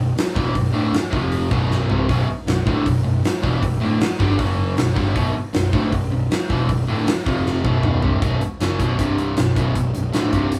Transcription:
Already playing: B0 B1 F#2
0.17 muted overdriven electric guitar stroke, muted picked electric bass stroke, snare, open hi-hat
0.35 E1 E2 B2 E3, kick
0.55 B0 B1 F#2, kick, open hi-hat
0.74 D1 D2 A2 D3
0.93 muted picked electric bass stroke, muted overdriven electric guitar stroke, snare, open hi-hat
1.12 F1 F2 C3 F3, kick
1.32 open hi-hat
1.51 B0 B1 F#2 B2, kick
1.71 snare
1.88 C1 C2 G2 C3, floor tom
2.09 B0 B1 F#2 B2, kick, open hi-hat
2.28 muted overdriven electric guitar stroke, muted picked electric bass stroke
2.46 B0 B1 F#2, snare, open hi-hat
2.66 D1 D2 A2 D3, kick
2.85 B0 B1 F#2, kick, open hi-hat
3.04 B0 B1 F#2
3.24 muted picked electric bass stroke, muted overdriven electric guitar stroke, snare, open hi-hat
3.43 E1 E2 B2 E3, kick
3.62 B0 B1 F#2, kick, open hi-hat
3.80 D1 D2 A2 D3
4.00 muted picked electric bass stroke, muted overdriven electric guitar stroke, snare, open hi-hat
4.20 G1 G2 D3 G3, kick
4.39 F#1 F#2 C#3 F#3, kick, open hi-hat
4.77 B0 B1 F#2, snare, open hi-hat
4.96 G1 G2 D3 G3, kick
5.15 B0 B1 F#2 B2, kick, open hi-hat
5.34 muted overdriven electric guitar stroke, muted picked electric bass stroke
5.54 B0 B1 F#2, snare, open hi-hat
5.73 D1 D2 A2 D3, kick
5.92 B0 B1 F#2, kick, open hi-hat
6.11 B0 B1 F#2
6.31 muted picked electric bass stroke, muted overdriven electric guitar stroke, snare, open hi-hat
6.50 E1 E2 B2 E3, kick
6.69 B0 B1 F#2, kick, open hi-hat
6.87 D1 D2 A2 D3
7.07 muted picked electric bass stroke, muted overdriven electric guitar stroke, snare, open hi-hat
7.26 F1 F2 C3 F3, kick
7.46 snare
7.64 B0 B1 F#2 B2, kick
7.83 mid tom
8.02 C1 C2 G2 C3, floor tom
8.22 B0 B1 F#2 B2, kick, closed hi-hat
8.41 muted overdriven electric guitar stroke, muted picked electric bass stroke, closed hi-hat
8.60 F#1 F#2 C#3 F#3, snare, closed hi-hat
8.79 B0 B1 F#2 B2, kick, closed hi-hat
8.99 C1 C2 G2 C3, kick, closed hi-hat
9.18 closed hi-hat
9.37 B0 B1 F#2, snare, closed hi-hat
9.56 B0 B1 F#2 B2, kick, closed hi-hat
9.75 B0 B1 F#2, kick, closed hi-hat
9.94 B0 B1 F#2, closed hi-hat
10.13 D1 D2 A2 D3, snare, closed hi-hat
10.33 C1 C2 G2 C3, kick, closed hi-hat
10.52 closed hi-hat

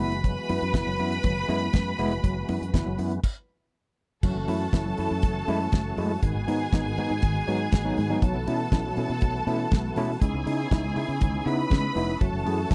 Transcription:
Already playing: F#4
0.00 F#1 E3 G#3 B3 E4 B4 B5, open hi-hat
0.12 closed hi-hat
0.24 F#3, kick, closed hi-hat, muted conga
0.49 F#2 B3 E4, open hi-hat, muted conga
0.62 F#2, closed hi-hat
0.74 F#1 B3 E4, kick, snare, closed hi-hat, high conga
0.87 F#1 F#3
0.98 F#2 B3 E4, open hi-hat
1.12 closed hi-hat
1.23 F#1 F#3, kick, closed hi-hat, muted conga, low conga
1.48 F#2 G#3 B3 E4, open hi-hat
1.61 B3 E4, closed hi-hat
1.73 F#2, kick, snare, closed hi-hat, high conga
1.99 F1 G#3 B3 E4, open hi-hat, high conga
2.11 closed hi-hat
2.24 F#1 F#3, kick, closed hi-hat
2.49 F#2 B3 E4, open hi-hat, muted conga
2.62 F#2, closed hi-hat
2.74 F#1 B3 E4, kick, snare, closed hi-hat, high conga
2.86 F#1 F#3
2.98 F#2 B3 E4, open hi-hat
3.12 closed hi-hat
3.24 kick, crash
4.23 F#1 E3 F#3 A3 C#4 F#4 A4 A5, kick, crash, muted conga
4.35 F#1
4.48 F#2 A3 E4, open hi-hat, muted conga
4.73 F#1 A3 E4, kick, snare, closed hi-hat, high conga
4.86 F#3
4.97 F#2 A3 E4, open hi-hat
5.11 F#2
5.22 F#1 F#3, kick, closed hi-hat, muted conga
5.48 F#2 G#3 A3 E4, open hi-hat
5.72 F#1, kick, snare, closed hi-hat, high conga
5.97 F#2 G#3 A3 E4, open hi-hat, high conga
6.22 G#1 G#2 D#3 G#3 B3 G#4 G#5, kick, closed hi-hat
6.35 G#1
6.48 G#2 B3 D#4, open hi-hat, muted conga
6.73 G#1 B3 D#4, kick, snare, closed hi-hat, high conga
6.85 G#2 D#3
6.97 G#2 B3 D#4, open hi-hat
7.10 G#2
7.22 G#1 G#2 D#3, kick, closed hi-hat, muted conga
7.47 G#2 F#3 B3 D#4, open hi-hat
7.72 G#1, kick, snare, closed hi-hat, high conga
7.84 F#3 B3 D#4
7.97 G#2 D#3, open hi-hat, high conga
8.10 F#3 B3 D#4
8.22 B1 B2 E3 F#3 A3 B3 F#4 A4 A5, kick, closed hi-hat, muted conga
8.35 B1
8.47 B2 C#4 E4, open hi-hat, muted conga
8.72 B1 C#4 E4, kick, snare, closed hi-hat, high conga
8.85 B2 F#3
8.96 B2 C#4 E4, open hi-hat
9.10 B2
9.21 B1 B2 F#3, kick, closed hi-hat, muted conga
9.47 B2 A3 C#4 E4, open hi-hat
9.60 C#4 E4
9.71 B1, kick, snare, closed hi-hat, high conga
9.96 B2 A3 C#4 E4, open hi-hat, high conga
10.21 C#2 C#3 G#3 C#4 D#4 E4 G#4 G#5, kick, closed hi-hat
10.34 C#2
10.46 C#3 D#4 E4, open hi-hat, muted conga
10.71 C#2 D#4 E4, kick, snare, closed hi-hat, high conga
10.85 C#3 G#3
10.96 C#3 D#4 E4, open hi-hat
11.09 C#3
11.21 C#2 C#3 G#3, kick, closed hi-hat, muted conga, low conga
11.46 C#3 B3 D#4 E4 B4 B5, open hi-hat
11.59 D#4 E4
11.70 C#3 G#3, kick, snare, closed hi-hat, high conga
11.96 F1 B3 D#4 E4, open hi-hat, high conga
12.09 D#4 E4
12.20 F#1 E3 F#3 A3 F#4 A4 A5, kick, closed hi-hat
12.33 F#1
12.46 F#2 E4 G#4, open hi-hat, muted conga
12.71 F#1 E4 G#4, kick, snare, closed hi-hat, high conga

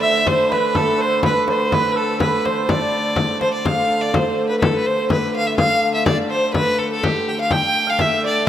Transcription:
Already playing: D3 A3 A4 C5 D5
0.02 E5
0.25 C5, frame drum
0.29 C5
0.45 C5
0.50 B4, frame drum
0.75 A4, frame drum
0.98 C5
1.23 B4, frame drum
1.48 C5 D5, frame drum
1.54 C5
1.71 B4, frame drum
1.92 A4 B4
1.97 A4
2.18 B4, frame drum
2.45 C5, frame drum
2.69 D5, frame drum
3.16 frame drum
3.41 C5, frame drum
3.54 D5
3.65 D3 A3 F5, frame drum
3.90 frame drum
4.01 D5
4.14 C5, frame drum
4.49 B4
4.59 A4 B4, frame drum
4.74 B4
4.86 C5, frame drum
5.10 B4, frame drum
5.36 F5
5.47 E5
5.57 F5, frame drum
5.82 frame drum
5.94 E5
6.06 D5, frame drum
6.30 C5
6.54 B4, frame drum
6.78 A4, frame drum
6.92 A4
7.03 G4, frame drum
7.29 G5
7.39 F5
7.51 D3 A3 G5 A5, frame drum
7.56 G5
7.75 frame drum
7.87 F5
7.99 E5, frame drum
8.24 D5

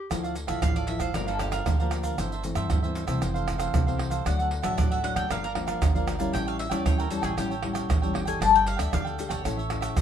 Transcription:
0.10 D2 D3 F3 A3 E4 A4 D5 F5, pandeiro, tamborim, shaker, surdo
0.23 A4 D5 F5, pandeiro, shaker
0.35 muted cavaquinho stroke, pandeiro, shaker
0.47 A1 F3 A3 E4 A4 D5 E5 F5, pandeiro, tamborim, shaker, surdo
0.62 A1 A2 E4 A4 D5 F5, pandeiro, tamborim, shaker, surdo
0.76 A4 D5 F5, pandeiro, shaker
0.87 F3 A3 E4 E5, pandeiro
0.99 G#1 A4 C5 D5 F5, pandeiro, tamborim, shaker, surdo
1.14 G1 G2 F3 A#3 D4 G4 A#4 D5 F5, pandeiro, tamborim, shaker, surdo
1.26 A4 A#4 D5 F5, pandeiro, shaker
1.39 F3 A#3 D4 G4, pandeiro, tamborim, shaker, surdo
1.51 F4 A#4 D5 F5, pandeiro, tamborim, shaker
1.66 D2 D3 G4, pandeiro, tamborim, shaker, surdo
1.79 F3 A#3 D4 A#4 D5 F5, pandeiro, shaker
1.91 G4 A#4 D5 F5, pandeiro, tamborim, shaker
2.03 A#4 D5 F5, pandeiro, shaker, surdo
2.18 G1 G2 E3 A3 C4 E4 A4 C5 E5, pandeiro, tamborim, shaker, surdo
2.32 A4 C5 E5, pandeiro, shaker
2.43 E3 A3 C4, muted cavaquinho stroke, pandeiro, shaker
2.55 G2 A4 C5 E5, pandeiro, tamborim, shaker, surdo
2.70 G2 E4 A4 C5 E5, pandeiro, tamborim, shaker, surdo
2.83 E3 A3 C4 A4 C5 E5, pandeiro, shaker
2.95 pandeiro, shaker
3.07 C2 E3 A3 C4 A4 C5 E5, pandeiro, tamborim, shaker, surdo
3.21 F1 F2 E4 A4 C5 F5, pandeiro, tamborim, shaker, surdo
3.34 A4 C5 F5, pandeiro, shaker
3.48 pandeiro, tamborim, shaker, surdo
3.58 E3 A3 C4 A4 C5 F5, pandeiro, tamborim, shaker
3.74 C2 C3, pandeiro, tamborim, shaker, surdo
3.87 E3 A3 C4 A4 C5 F5, pandeiro, shaker
3.97 E4 A4 C5 F5, pandeiro, tamborim
4.10 A4 C5 F5, pandeiro, shaker, surdo
4.25 D2 D3 F#3 A3 D4 A4 D5 F#5, pandeiro, tamborim, shaker, surdo
4.39 A4 D5 F#5, pandeiro, shaker
4.50 muted cavaquinho stroke, pandeiro
4.62 A1 F#3 A3 D4 A4 D5 E5 F#5, pandeiro, tamborim, shaker, surdo
4.77 A1 A2 D4 A4 D5 F#5, pandeiro, tamborim, shaker, surdo
4.91 A4 D5 E5 F#5, pandeiro, shaker
5.03 F#3 A3 D4 F#5, pandeiro
5.15 D2 A4 D5 F#5 G5, pandeiro, tamborim, shaker, surdo
5.29 G1 G2 F3 A#3 D4 G4 A#4 D5 F5, pandeiro, tamborim, shaker, surdo
5.43 A#4 D5 F5, pandeiro, shaker
5.55 F3 A#3 D4, pandeiro, tamborim, surdo
5.67 A#4 D5 F5, pandeiro, tamborim, shaker
5.82 G#1 D3, pandeiro, tamborim, shaker, surdo
5.95 F3 A#3 D4 A#4 D5 F5, pandeiro, shaker
6.07 G4 A#4 D5 F5, pandeiro, tamborim, shaker
6.19 G3 C#4 E4 A#4 D5 F5, pandeiro, shaker, surdo
6.33 A1 A2 G4 A4 C#5 G5, pandeiro, tamborim, shaker, surdo
6.46 A4 C#5 F5 G5, pandeiro, shaker
6.57 E5, muted cavaquinho stroke, pandeiro
6.70 E2 G3 C#4 E4 A4 C#5 D5 G5, pandeiro, tamborim, shaker, surdo
6.85 E2 E3 G4 A4 C#5 G5, pandeiro, tamborim, shaker, surdo
6.98 A4 A#4 C#5 G5, pandeiro, shaker
7.10 G3 C#4 E4 A4, pandeiro, shaker, surdo
7.22 A1 G#4 A4 C#5 G5, pandeiro, tamborim, shaker, surdo
7.37 A1 A2 G3 C#4 E4 G4 A4 C#5 G5, pandeiro, tamborim, shaker, surdo
7.50 A4 C#5 G5, pandeiro, shaker
7.63 G3 C#4 E4, pandeiro, tamborim, surdo
7.73 A4 C#5 G5, pandeiro, tamborim, shaker
7.88 A1 E3, pandeiro, tamborim, shaker, surdo
8.02 G3 C#4 E4 A4 C#5 G5, pandeiro, shaker
8.13 G1 G4 A4 C#5 G5, pandeiro, tamborim
8.25 D4 G4 A4 C#5 G5 G#5, pandeiro, shaker, surdo
8.39 G1 G3 D4 A4 D5 G5 A5, pandeiro, tamborim, shaker, surdo
8.53 A4 D5 G5, pandeiro, shaker
8.65 F5, muted cavaquinho stroke, pandeiro
8.77 D2 D4 G4 A4 D5 E5 G5, pandeiro, tamborim, shaker, surdo
8.91 D2 D3 D4 A4 D5 F5 G5, pandeiro, tamborim, shaker, surdo
9.04 A4 D5 G5, pandeiro, shaker
9.19 D4 G4 A4, pandeiro, shaker, surdo
9.29 G1 A4 C#5 D5 G5, pandeiro, tamborim, shaker, surdo
9.44 A1 A3 C#4 E4 A4 C#5 E5, pandeiro, tamborim, shaker, surdo
9.57 A4 C#5 E5, pandeiro, shaker
9.70 C#4 E4 A4, pandeiro, tamborim, shaker, surdo
9.81 A4 C#5 E5, pandeiro, tamborim, shaker
9.96 C#2 E3, pandeiro, tamborim, shaker, surdo

